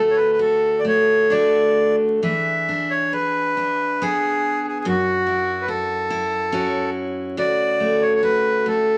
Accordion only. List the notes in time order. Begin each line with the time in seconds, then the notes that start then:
Already playing: A4
0.11 C#5
0.16 B4
0.33 B4
0.41 A4
0.79 D5
0.87 C#5
1.31 D5
2.24 E5
2.90 C#5
3.12 B4
4.02 G#4
4.67 G#4
4.80 G#4
4.88 F#4
5.61 B4
5.68 A4
7.39 D5
8.02 C#5
8.15 C#5
8.23 B4
8.68 A4